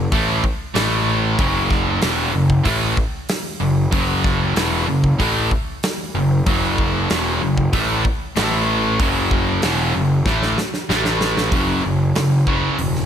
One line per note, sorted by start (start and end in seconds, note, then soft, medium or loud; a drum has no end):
0.12 0.42 A1 medium
0.12 0.43 A2 loud
0.12 0.43 E3 medium
0.12 0.43 A3 loud
0.12 kick loud
0.12 open hi-hat medium
0.44 kick medium
0.74 1.35 A1 medium
0.74 1.37 A2 medium
0.74 1.38 E3 loud
0.74 1.38 A3 loud
0.74 snare loud
0.74 open hi-hat medium
1.38 1.99 F#1 medium
1.38 2.01 F#2 medium
1.38 2.01 C#3 medium
1.38 2.01 F#3 medium
1.38 kick loud
1.38 open hi-hat soft
1.71 kick medium
1.71 snare soft
2.02 2.32 E1 loud
2.02 2.33 E2 medium
2.02 2.33 B2 medium
2.02 2.33 E3 loud
2.02 snare loud
2.02 open hi-hat medium
2.33 2.64 F#1 medium
2.33 2.59 F#2 medium
2.33 2.59 C#3 medium
2.50 kick medium
2.64 2.95 A1 medium
2.64 2.96 A2 medium
2.64 2.96 E3 loud
2.64 2.96 A3 loud
2.64 kick medium
2.64 open hi-hat medium
2.97 kick medium
3.29 snare loud
3.29 open hi-hat medium
3.60 3.91 F#1 medium
3.60 3.86 F#2 medium
3.60 3.86 C#3 medium
3.92 4.52 F#1 medium
3.92 4.55 F#2 medium
3.92 4.55 C#3 medium
3.92 4.55 F#3 medium
3.92 kick loud
3.92 open hi-hat medium
4.24 kick medium
4.24 snare soft
4.55 4.85 E1 loud
4.55 4.87 E2 loud
4.55 4.87 B2 medium
4.55 4.87 E3 loud
4.55 snare loud
4.55 open hi-hat medium
4.88 5.17 F#1 medium
4.88 5.13 F#2 medium
4.88 5.13 C#3 medium
5.04 kick medium
5.19 5.49 A1 medium
5.19 5.50 A2 medium
5.19 5.50 E3 loud
5.19 5.51 A3 loud
5.19 kick medium
5.19 open hi-hat medium
5.51 kick medium
5.83 snare loud
5.83 open hi-hat medium
6.15 6.44 F#1 medium
6.15 6.40 F#2 medium
6.15 6.40 C#3 medium
6.46 7.06 F#1 medium
6.46 7.09 F#2 medium
6.46 7.09 C#3 loud
6.46 7.09 F#3 medium
6.46 kick loud
6.46 open hi-hat medium
6.78 kick medium
7.10 7.40 E1 loud
7.10 7.40 E2 medium
7.10 7.41 B2 medium
7.10 7.41 E3 loud
7.10 snare loud
7.10 open hi-hat soft
7.42 7.71 F#1 medium
7.42 7.67 F#2 medium
7.42 7.67 C#3 medium
7.58 kick medium
7.73 8.02 A1 medium
7.73 8.04 A2 medium
7.73 8.04 E3 loud
7.73 8.04 A3 loud
7.73 kick medium
7.73 open hi-hat medium
8.05 kick medium
8.36 8.96 A1 medium
8.36 8.98 A2 medium
8.36 8.99 E3 medium
8.36 8.99 A3 loud
8.36 snare loud
8.36 open hi-hat medium
9.00 9.59 F#1 medium
9.00 9.62 F#2 medium
9.00 9.62 C#3 loud
9.00 9.62 F#3 loud
9.00 kick loud
9.00 open hi-hat medium
9.31 kick medium
9.62 9.93 E1 loud
9.62 9.94 E2 medium
9.62 9.94 B2 medium
9.62 9.94 E3 loud
9.62 snare loud
9.62 open hi-hat medium
9.95 10.25 F#1 medium
9.95 10.20 F#2 medium
9.95 10.20 C#3 medium
10.26 10.55 A1 medium
10.26 10.56 A2 medium
10.26 10.57 E3 medium
10.26 10.57 A3 loud
10.26 kick loud
10.26 snare medium
10.42 snare medium
10.58 snare medium
10.74 snare medium
10.89 11.53 A1 loud
10.89 11.52 A2 medium
10.89 11.52 E3 medium
10.89 11.52 A3 medium
10.89 snare medium
11.05 snare medium
11.21 snare medium
11.37 snare medium
11.52 11.79 F#1 medium
11.52 11.82 F#2 medium
11.52 11.82 C#3 medium
11.52 11.82 F#3 medium
11.52 kick loud
11.52 open hi-hat soft
11.84 12.11 F#1 medium
11.84 12.12 F#2 medium
11.84 12.13 C#3 medium
12.15 12.69 F#1 medium
12.15 12.44 F#2 medium
12.15 12.44 C#3 medium
12.15 snare loud
12.15 open hi-hat soft
12.47 12.77 F#2 medium
12.47 12.77 C#3 medium
12.47 12.77 F#3 medium
12.47 kick medium
12.79 13.06 E1 medium
12.79 13.06 F#2 medium
12.79 13.06 C#3 medium
12.79 open hi-hat soft
12.95 snare soft